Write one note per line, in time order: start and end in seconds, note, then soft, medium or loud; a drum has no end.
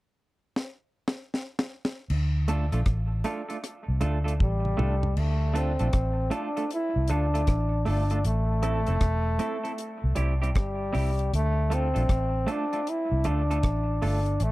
0.56 snare medium
1.08 snare medium
1.34 snare medium
1.59 snare medium
1.85 snare medium
2.10 2.69 D2 loud
2.10 crash medium
2.48 2.64 A3 medium
2.48 2.64 D4 medium
2.48 2.65 F4 medium
2.48 2.65 A4 medium
2.48 closed hi-hat medium
2.72 2.85 A#1 medium
2.72 2.80 A3 soft
2.72 2.80 D4 medium
2.72 2.80 F4 medium
2.72 2.79 A4 medium
2.72 closed hi-hat medium
2.86 3.22 A1 medium
2.86 kick loud
2.86 cross-stick medium
2.86 closed hi-hat medium
3.24 3.41 A3 medium
3.24 3.41 D4 medium
3.24 3.41 F4 medium
3.24 3.41 A4 medium
3.24 closed hi-hat medium
3.49 3.57 A3 soft
3.49 3.57 D4 medium
3.49 3.56 F4 medium
3.49 3.56 A4 medium
3.49 closed hi-hat soft
3.64 cross-stick medium
3.64 closed hi-hat medium
3.88 4.01 C2 medium
4.01 4.38 D2 medium
4.01 4.17 A3 medium
4.01 4.17 D4 medium
4.01 4.18 F4 medium
4.01 4.18 A4 medium
4.01 closed hi-hat medium
4.24 4.33 A3 medium
4.24 4.33 D4 medium
4.24 4.33 F4 medium
4.24 4.32 A4 medium
4.24 closed hi-hat soft
4.40 4.76 A1 medium
4.40 5.20 G3 medium
4.40 kick loud
4.40 high tom soft
4.65 mid tom medium
4.77 5.14 C2 medium
4.77 4.94 A3 medium
4.77 4.94 D4 medium
4.77 4.95 F4 medium
4.77 4.95 A4 medium
4.77 mid tom medium
5.03 floor tom medium
5.17 5.76 D2 loud
5.17 5.59 A3 medium
5.17 crash medium
5.54 5.71 A3 medium
5.54 5.71 D4 medium
5.54 5.71 F4 medium
5.54 5.72 A4 medium
5.54 closed hi-hat medium
5.58 6.37 C4 medium
5.79 5.93 A#1 medium
5.79 5.87 A3 soft
5.79 5.87 D4 medium
5.79 5.87 F4 medium
5.79 5.87 A4 soft
5.79 closed hi-hat soft
5.93 6.30 A1 medium
5.93 kick loud
5.93 cross-stick medium
5.93 closed hi-hat medium
6.30 6.48 A3 medium
6.30 6.48 D4 medium
6.30 6.48 F4 medium
6.30 6.48 A4 medium
6.30 closed hi-hat medium
6.35 6.72 D4 medium
6.57 6.64 A3 medium
6.57 6.64 D4 medium
6.57 6.64 F4 soft
6.57 6.64 A4 medium
6.57 closed hi-hat soft
6.71 7.08 E4 medium
6.71 closed hi-hat medium
6.96 7.08 C2 medium
7.08 7.45 D2 medium
7.08 7.26 A3 medium
7.08 7.26 D4 medium
7.08 7.26 F4 medium
7.08 7.26 A4 medium
7.08 closed hi-hat medium
7.12 7.83 D4 medium
7.34 7.42 A3 medium
7.34 7.42 D4 medium
7.34 7.41 F4 medium
7.34 7.41 A4 medium
7.34 closed hi-hat medium
7.47 7.84 A1 loud
7.47 kick loud
7.47 cross-stick loud
7.47 closed hi-hat medium
7.85 8.22 G1 medium
7.85 8.02 A3 medium
7.85 8.03 D4 medium
7.85 8.23 D4 medium
7.85 8.03 F4 medium
7.85 8.03 A4 medium
7.85 open hi-hat medium
8.10 8.19 A3 medium
8.10 8.19 D4 medium
8.10 8.18 F4 medium
8.10 8.18 A4 medium
8.10 closed hi-hat medium
8.25 8.84 A1 loud
8.25 10.29 A3 loud
8.25 closed hi-hat loud
8.63 8.79 A3 medium
8.63 8.79 C4 medium
8.63 8.79 E4 medium
8.63 8.80 A4 medium
8.63 closed hi-hat medium
8.87 9.01 F1 medium
8.87 8.95 A3 soft
8.87 8.95 C4 medium
8.87 8.95 E4 soft
8.87 8.95 A4 medium
8.87 closed hi-hat soft
9.01 9.37 E1 medium
9.01 kick loud
9.01 cross-stick medium
9.01 closed hi-hat medium
9.39 9.56 A3 loud
9.39 9.56 C4 medium
9.39 9.56 E4 medium
9.39 9.57 A4 medium
9.39 closed hi-hat medium
9.63 9.72 A3 medium
9.63 9.72 C4 soft
9.63 9.72 E4 medium
9.63 9.71 A4 medium
9.63 closed hi-hat soft
9.78 closed hi-hat medium
10.04 10.16 C2 medium
10.15 10.56 C2 medium
10.15 10.33 G3 medium
10.15 10.33 C4 medium
10.15 10.33 E4 medium
10.15 10.33 G4 medium
10.15 closed hi-hat medium
10.42 10.49 G3 medium
10.42 10.49 C4 medium
10.42 10.49 E4 medium
10.42 10.49 G4 medium
10.42 closed hi-hat soft
10.55 10.91 G1 medium
10.55 11.30 G3 medium
10.55 kick loud
10.55 cross-stick loud
10.55 closed hi-hat medium
10.93 11.30 C2 medium
10.93 11.10 G3 medium
10.93 11.10 C4 medium
10.93 11.10 E4 medium
10.93 11.10 G4 medium
10.93 open hi-hat medium
11.19 closed hi-hat medium
11.33 11.92 D2 loud
11.33 11.75 A3 loud
11.33 closed hi-hat medium
11.70 11.87 A3 medium
11.70 12.53 C4 loud
11.70 11.87 D4 medium
11.70 11.87 F4 medium
11.70 11.88 A4 medium
11.70 closed hi-hat medium
11.94 12.09 A#1 medium
11.94 12.03 A3 medium
11.94 12.02 D4 soft
11.94 12.02 F4 medium
11.94 12.02 A4 medium
11.94 closed hi-hat soft
12.09 12.45 A1 medium
12.09 kick loud
12.09 cross-stick medium
12.09 closed hi-hat medium
12.47 12.64 A3 medium
12.47 12.64 D4 loud
12.47 12.64 F4 medium
12.47 12.64 A4 medium
12.47 closed hi-hat medium
12.51 12.91 D4 loud
12.73 12.80 A3 soft
12.73 12.80 D4 medium
12.73 12.80 F4 soft
12.73 12.80 A4 medium
12.73 closed hi-hat soft
12.87 13.29 E4 loud
12.87 closed hi-hat medium
13.12 13.24 C2 medium
13.24 13.61 D2 medium
13.24 13.41 A3 medium
13.24 13.41 D4 medium
13.24 14.03 D4 medium
13.24 13.41 F4 medium
13.24 13.42 A4 medium
13.24 closed hi-hat medium
13.50 13.58 A3 medium
13.50 13.57 D4 medium
13.50 13.57 F4 medium
13.50 13.57 A4 medium
13.50 closed hi-hat soft
13.63 13.99 A1 medium
13.63 kick loud
13.63 cross-stick loud
13.63 closed hi-hat medium
14.02 14.38 G1 medium
14.02 14.18 A3 medium
14.02 14.19 D4 medium
14.02 14.44 D4 medium
14.02 14.19 F4 medium
14.02 14.19 A4 medium
14.02 open hi-hat medium
14.26 closed hi-hat medium
14.40 14.52 A1 loud
14.40 14.52 A3 loud
14.40 closed hi-hat medium